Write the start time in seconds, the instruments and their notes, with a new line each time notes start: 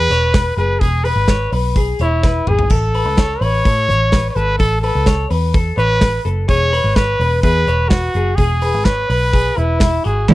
Already playing: clean electric guitar G#4, trumpet B4
0.10 picked electric bass E1, clean electric guitar C#5, hi-hat pedal, open hi-hat
0.34 clean electric guitar B4, kick, snare, hi-hat pedal, open hi-hat
0.56 picked electric bass F#1, clean electric guitar G#4, trumpet B4, hi-hat pedal, open hi-hat
0.80 picked electric bass E1, trumpet G#4, clean electric guitar G#4, kick, hi-hat pedal, open hi-hat
1.04 trumpet B4, clean electric guitar B4, hi-hat pedal, open hi-hat
1.16 picked electric bass G#1
1.28 clean electric guitar C#5, kick, snare, hi-hat pedal, open hi-hat
1.52 picked electric bass B1, clean electric guitar B4, hi-hat pedal, open hi-hat
1.76 clean electric guitar G#4, kick, hi-hat pedal, open hi-hat
1.99 picked electric bass E1, trumpet E4, clean electric guitar C#5, hi-hat pedal, open hi-hat
2.23 clean electric guitar B4, kick, snare
2.47 picked electric bass G#1, clean electric guitar G#4, trumpet G#4, mid tom
2.59 floor tom
2.70 picked electric bass A1, trumpet A4, clean electric guitar A4, kick, splash
2.94 clean electric guitar B4, hi-hat pedal, open hi-hat
3.05 picked electric bass C#2
3.17 clean electric guitar C#5, kick, snare, hi-hat pedal, open hi-hat
3.41 picked electric bass A1, clean electric guitar B4, trumpet C#5, hi-hat pedal, open hi-hat
3.65 picked electric bass A2, clean electric guitar A4, kick, hi-hat pedal, open hi-hat
3.88 picked electric bass A1, clean electric guitar C#5, hi-hat pedal, open hi-hat
4.12 clean electric guitar B4, kick, snare, hi-hat pedal, open hi-hat
4.30 trumpet C#5
4.35 picked electric bass G#1, clean electric guitar A4, trumpet B4, hi-hat pedal, open hi-hat
4.58 picked electric bass A1, trumpet A4, clean electric guitar A4, kick, hi-hat pedal, open hi-hat
4.82 trumpet A4, clean electric guitar B4, hi-hat pedal, open hi-hat
4.95 picked electric bass C#2
5.06 clean electric guitar C#5, kick, snare, hi-hat pedal, open hi-hat
5.30 picked electric bass E2, clean electric guitar B4, hi-hat pedal, open hi-hat
5.54 clean electric guitar A4, kick, hi-hat pedal, open hi-hat
5.77 picked electric bass A1, trumpet B4, clean electric guitar C#5, hi-hat pedal, open hi-hat
6.01 clean electric guitar B4, kick, snare, hi-hat pedal, open hi-hat
6.25 picked electric bass F#1, clean electric guitar A4, hi-hat pedal, open hi-hat
6.48 picked electric bass E1, clean electric guitar G#4, trumpet C#5, kick, hi-hat pedal, open hi-hat
6.73 clean electric guitar B4, hi-hat pedal, open hi-hat
6.84 picked electric bass G#1
6.96 trumpet B4, clean electric guitar C#5, kick, snare, hi-hat pedal, open hi-hat
7.20 picked electric bass E1, clean electric guitar B4, hi-hat pedal, open hi-hat
7.42 picked electric bass E2, clean electric guitar G#4, trumpet B4, kick, hi-hat pedal, open hi-hat
7.67 picked electric bass E1, clean electric guitar C#5, hi-hat pedal, open hi-hat
7.89 trumpet F#4, clean electric guitar B4, kick, snare, hi-hat pedal, open hi-hat
8.14 picked electric bass F#1, clean electric guitar G#4, hi-hat pedal, open hi-hat
8.35 picked electric bass E1, trumpet G#4, clean electric guitar G#4, kick, hi-hat pedal, open hi-hat
8.61 clean electric guitar B4, hi-hat pedal, open hi-hat
8.74 picked electric bass G#1
8.85 trumpet B4, clean electric guitar C#5, kick, snare, hi-hat pedal, open hi-hat
9.09 picked electric bass B1, clean electric guitar B4, hi-hat pedal, open hi-hat
9.33 clean electric guitar G#4, kick, hi-hat pedal, open hi-hat
9.57 picked electric bass E1, trumpet E4, clean electric guitar B4, hi-hat pedal, open hi-hat
9.80 clean electric guitar E4, kick, snare, hi-hat pedal, open hi-hat
10.04 picked electric bass G#1, clean electric guitar F#4, trumpet G#4, hi-hat pedal, open hi-hat
10.28 picked electric bass A1, steel-string acoustic guitar A2 E3 A3 C#4 E4, clean electric guitar A4, trumpet A4, kick, hi-hat pedal, open hi-hat